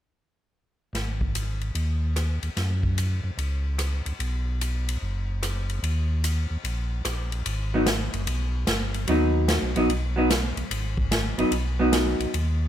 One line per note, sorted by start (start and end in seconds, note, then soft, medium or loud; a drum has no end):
0.93 1.71 G#1 medium
0.93 snare soft
0.93 ride soft
1.21 kick soft
1.35 hi-hat pedal soft
1.35 ride soft
1.61 ride soft
1.75 2.39 D#2 medium
1.75 ride soft
2.16 cross-stick soft
2.16 hi-hat pedal soft
2.16 ride soft
2.42 2.50 D#2 soft
2.42 ride soft
2.57 3.21 F#2 medium
2.57 snare soft
2.57 ride soft
2.83 kick soft
2.98 hi-hat pedal soft
2.98 ride soft
3.24 3.31 F#2 soft
3.37 4.02 C#2 medium
3.37 ride soft
3.79 cross-stick soft
3.79 hi-hat pedal soft
3.79 ride soft
4.05 4.13 C#2 soft
4.05 ride soft
4.19 4.97 B1 medium
4.19 ride soft
4.61 hi-hat pedal soft
4.61 ride medium
4.89 ride soft
5.01 5.79 F#1 medium
5.43 cross-stick soft
5.43 hi-hat pedal soft
5.43 ride medium
5.70 ride soft
5.83 6.47 D#2 medium
5.83 ride soft
6.24 hi-hat pedal soft
6.24 ride medium
6.50 6.57 D#2 soft
6.64 7.02 A#1 medium
6.64 ride soft
7.05 7.43 A#1 medium
7.05 cross-stick medium
7.05 hi-hat pedal medium
7.05 ride medium
7.32 ride soft
7.46 8.09 G#1 medium
7.46 ride medium
7.74 7.86 F#3 soft
7.74 7.86 B3 medium
7.74 7.86 D#4 medium
7.86 snare medium
7.86 hi-hat pedal medium
7.86 ride medium
8.13 8.26 F#1 medium
8.13 ride soft
8.27 8.65 B1 medium
8.27 ride medium
8.67 9.06 G1 medium
8.67 snare medium
8.67 hi-hat pedal soft
8.67 ride medium
8.94 ride soft
9.08 9.59 D#2 medium
9.08 9.70 F#3 medium
9.08 9.71 B3 medium
9.08 9.71 D#4 medium
9.08 ride medium
9.48 snare medium
9.48 hi-hat pedal medium
9.48 ride medium
9.62 9.75 B1 soft
9.75 9.88 A#1 medium
9.75 9.88 F#3 medium
9.75 9.89 B3 medium
9.75 9.89 D#4 medium
9.75 ride soft
9.89 10.53 B1 medium
9.89 ride soft
10.16 10.29 F#3 medium
10.16 10.29 B3 medium
10.16 10.30 D#4 medium
10.30 snare medium
10.30 hi-hat pedal medium
10.30 ride medium
10.56 10.64 B1 soft
10.56 ride soft
10.70 11.34 G#1 medium
10.70 ride medium
10.97 kick soft
11.11 snare medium
11.11 hi-hat pedal medium
11.11 ride medium
11.38 11.45 G#1 soft
11.38 11.51 F#3 soft
11.38 11.51 B3 soft
11.38 11.51 D#4 medium
11.38 ride soft
11.51 12.15 B1 medium
11.51 ride medium
11.79 12.31 F#3 medium
11.79 12.31 B3 medium
11.79 12.32 D#4 medium
11.93 snare medium
11.93 hi-hat pedal soft
11.93 ride medium
12.19 12.26 B1 soft
12.19 ride soft
12.34 12.68 D#2 medium
12.34 ride soft